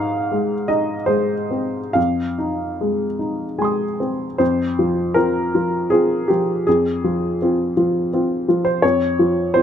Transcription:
upright piano
Already playing: G#2 D#4 F5
0.31 G#3
0.68 D#4 D#5
1.06 G#3 C5
1.51 C4
1.93 F2 F5
2.38 D#4
2.81 G#3
3.19 D#4
3.58 G#3 G#5 C6
3.64 D#6
4.00 C4
4.38 F2 C5
4.79 F3 F4
5.14 C4 F4 A#4
5.55 F3 F4
5.90 C4 F4 G#4
6.28 F3 F4 G4
6.67 F2 G#4
7.04 F3 F4
7.42 C4 F4
7.77 F3 F4
8.13 C4 F4
8.48 F3 F4
8.65 C5
8.82 F2 C#5
9.19 F3 F4
9.54 C4 F4 C5

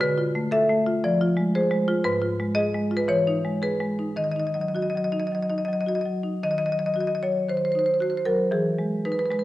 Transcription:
marimba
0.01 D3 B4
0.18 F4
0.35 A3
0.51 A4 E5
0.69 A3
0.87 F4
1.04 F3 D5
1.21 F4
1.37 G#3
1.55 G#4 C5
1.71 G#3
1.88 F4
2.04 G#2 B4
2.22 F4
2.40 G#3
2.55 G#4 D#5
2.75 G#3
2.91 F4
2.97 B4
3.08 E3 C#5
3.27 D#4
3.45 G#3
3.62 G#4 B4
3.80 G#3
3.99 D#4
4.16 D#3 D#5
4.24 D#5
4.32 D#5
4.36 D#4 D#5
4.47 D#5
4.54 F#3 D#5
4.61 D#5
4.68 D#5
4.75 F#4 D#5
4.82 D#5
4.90 D#5
4.95 F#3 D#5
5.04 D#5
5.12 D#4 D#5
5.20 D#5
5.27 D#5
5.32 F#3 D#5
5.43 D#5
5.50 D#4 D#5
5.58 D#5
5.65 F#3 D#5
5.73 D#5
5.81 D#5
5.86 F#4 D#5
5.95 D#5
6.01 D#5
6.05 F#3
6.24 D#4
6.43 D#3 D#5
6.51 D#5
6.58 D#5
6.66 F#3 D#5
6.72 D#5
6.79 D#5
6.86 D#5
6.94 F#4 D#5
7.00 D#5
7.07 D#5
7.15 D#5
7.23 F#3 C#5
7.49 D#3 C5
7.57 C5
7.65 C5
7.72 D#4 C5
7.79 C5
7.86 C5
7.94 C5
8.00 F#4 C5
8.10 C5
8.17 C5
8.25 F#3 A#4
8.51 E3 G#4
8.79 G#3
9.05 D#4 B4
9.12 B4
9.19 B4
9.26 B4
9.30 G#3 B4
9.39 B4

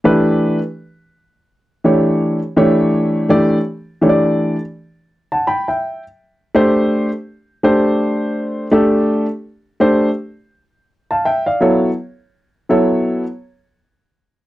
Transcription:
grand piano
0.04 E3 A3 D4 G4 B4
1.84 E3 A3 D4 G4 C#5
2.56 E3 A3 D4 G4 C#5
3.29 E3 A3 D4 G4 D5
4.01 E3 A3 D4 G4 C#5
4.09 D5
5.32 F#5 A5
5.47 G5 B5
5.68 E5 G5
6.55 A3 D4 G4 C5
7.63 A3 D4 G4 C5
8.72 A3 D4 G4 A4
9.80 A3 D4 G4 C5
11.11 F5 A5
11.25 E5 G5
11.46 D5 F5
11.61 F#3 B3 E4 A4 C#5
12.69 F#3 B3 E4 A4 C#5

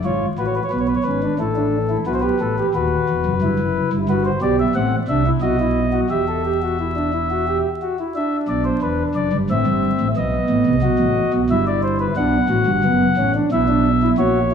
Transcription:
pipe organ
0.05 G#1 G#2 F4 C#5
0.38 A1 A2 F#4 B4
0.46 C#5
0.55 B4
0.63 C#5
0.70 B1 B2 B3 B4
0.79 C#5
0.87 B4
0.95 C#5
1.03 G#1 G#2 C#4 B4
1.22 D4
1.39 A1 A2 E4 A4
1.56 D4
1.89 E4
2.06 B1 B2 F#4 B4
2.13 C5
2.20 G4 B4
2.40 A1 A2 A4
2.58 G4
2.75 D#1 D#2 F#4 B4
3.09 E1 E2
3.26 F#1 F#2
3.42 G1 G2 E4
3.59 F#1 F#2
3.93 G1 G2
4.09 G1 G2 F#4 B4
4.25 C5
4.42 B1 B2 G4 D5
4.59 E5
4.75 A1 A2 C4 F#5
5.08 C2 C3 D4 E5
5.26 E4
5.41 B1 B2 F#4 D#5
5.59 E4
5.92 F#4
6.10 E1 E2 G4 E5
6.28 A4
6.45 G4
6.62 F#4
6.79 E4
6.96 D4
7.13 E4
7.30 F#4
7.48 G4
7.82 F#4
7.99 E4
8.15 D4 E5
8.48 B1 B2 D5
8.65 C5
8.82 E1 E2 B4
9.15 F#1 F#2 D5
9.33 G1 G2
9.50 A1 A2 C4 E5
9.66 G1 G2
10.00 A1 A2
10.17 B1 B2 B3 D#5
10.50 A1 A2
10.66 C2 C3
10.82 B1 B2 F#4
10.99 A1 A2
11.34 B1 B2
11.50 G1 G2 E4 E5
11.67 D5
11.83 C5
12.00 B4
12.16 B1 B2 D4 F#5
12.49 A1 A2 F#4
12.66 G1 G2
12.84 F#1 F#2 B3
13.17 A1 A2 C#4
13.35 D4
13.52 B1 B2 E4 E5
13.68 D4
14.02 E4
14.18 A#1 A#2 F#4 C#5
14.51 E4

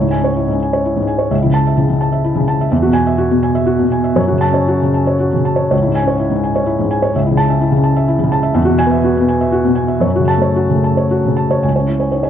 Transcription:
felt piano
Already playing: C#2
0.01 G#2 E4
0.11 G#5
0.21 C#4 C#5
0.36 E4
0.48 G#2
0.53 C#4
0.63 G#5
0.73 C#5
0.85 E4
0.96 G#2
1.01 G#2
1.07 G#5
1.19 C#5
1.31 C#2 E5
1.42 C#3 E4
1.54 A5
1.67 E5
1.77 C#3 E4
1.89 C#3
2.01 A5
2.12 E5
2.25 E4
2.36 C#3
2.40 C#3
2.48 A5
2.61 E5
2.72 E2 E5
2.82 F#4
2.87 B2
2.93 G#5
3.07 E5
3.18 F#4
3.31 B2
3.43 G#5
3.55 E5
3.66 F#4
3.79 B2
3.83 B2
3.92 G#5
4.04 E5
4.16 F#2 C#5
4.28 F#4
4.32 C#3
4.41 A5
4.50 C#4 C#5
4.68 F#4
4.82 C#3 C#4
4.94 A5
5.07 C#5
5.20 F#4
5.33 C#3
5.45 A5
5.56 C#5
5.71 C#2 C#5
5.82 E4
5.87 G#2
5.95 G#5
6.03 C#4
6.08 C#5
6.19 E4
6.30 G#2
6.36 C#4
6.44 G#5
6.56 C#5
6.66 E4
6.79 G#2
6.84 G#2
6.91 G#5
7.02 C#5
7.16 C#2 E5
7.27 E4
7.31 C#3
7.37 A5
7.47 C#4 E5
7.61 E4
7.72 C#3
7.76 C#4
7.84 A5
7.97 E5
8.08 E4
8.19 C#3
8.24 C#3
8.32 A5
8.43 E5
8.54 E2 E5
8.65 F#4
8.70 B2
8.79 G#5
8.87 B3
8.91 E5
9.04 F#4
9.17 B2
9.21 B3
9.28 G#5
9.41 E5
9.52 F#4
9.64 B2
9.75 G#5
9.88 E5
10.00 F#2 C#5
10.16 F#4
10.20 C#3
10.28 A5
10.38 A3
10.42 C#5
10.56 F#4
10.70 C#3
10.75 A3
10.84 A5
10.97 C#5
11.11 F#4
11.26 C#3
11.37 A5
11.51 C#5
11.63 C#2 G#5
11.76 C#5 G#5
11.80 C#4
11.87 E4
12.00 C#5 G#5
12.11 D#4 C#5
12.23 C#5 G#5

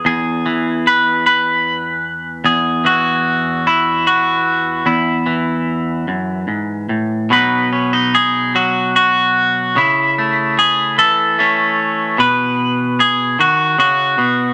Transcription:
clean electric guitar
Already playing: E3
0.05 E2 G#4
0.46 E3
0.87 B4
1.26 B4
2.44 E2 G#4
2.85 E3 F#4
3.67 E4
4.07 F#4
4.86 E2 E4
5.26 E3
6.08 F#2
6.48 G#2
6.89 A2
7.30 B2 F#3 B3 D#4 B4
7.73 C#4
7.93 D#4
8.15 G#4
8.55 F#3 F#4
8.96 F#4
9.76 C#3 E4
10.18 A3
10.59 G#4
10.98 E3 A4
11.39 A3 C#4
12.18 B2 B4
13.00 G#4
13.39 D#3 F#4
13.78 C#3 F#4
14.18 B2

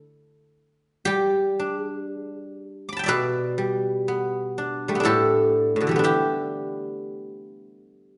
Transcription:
guzheng
Already playing: E4 A4
1.05 G3 G4
1.59 D4
1.76 G#4
1.95 G4
2.15 G#4
2.34 G4
2.89 B5 D6
2.97 G5 A5
3.04 D5 E5
3.08 B2 B4
3.58 G3
4.08 B3
4.58 D4
4.88 G3 A3
4.95 B3
5.00 D4 E4
5.05 A2 G4 A4
5.76 A2
5.80 B2 D3
5.87 E3 G3
5.91 A3
5.96 B3 D4
6.04 E4 G4

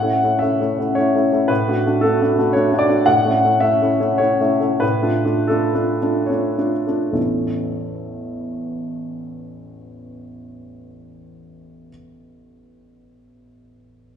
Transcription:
upright piano
Already playing: F#5
0.02 A3 C#4 E4
0.24 A3 C#4 E4
0.39 A3 C#4 E4 E5
0.60 A3 C#4 E4
0.79 A3 C#4 E4
0.95 A3 C#4 E4 C#5
1.15 A3 C#4 E4
1.32 A3 C#4 E4
1.48 A2 B4
1.68 A3 D4 F#4
1.86 A3 D4 F#4
2.01 A3 D4 F#4 A4
2.21 A3 D4 F#4
2.39 A3 D4 F#4
2.53 A3 D4 F#4 C#5
2.72 A3 D4 F#4
2.79 D5
2.88 A3 D4 F#4
3.06 A2 F#5
3.25 A3 C#4 E4
3.45 A3 C#4 E4
3.60 A3 C#4 E4 E5
3.82 A3 C#4 E4
4.00 A3 C#4 E4
4.18 A3 C#4 E4 C#5
4.41 A3 C#4 E4
4.61 A3 C#4 E4
4.80 A2 B4
5.02 A3 D4 F4
5.25 A3 D4 F4
5.47 A3 D4 F4 A4
5.74 A3 D4 F4
6.02 A3 D4 F4
6.26 A3 D4 F4 C#5
6.58 A3 D4 F4
6.87 A3 D4 F4
7.11 A1 E2 E3 A3 C#4 E4 A4

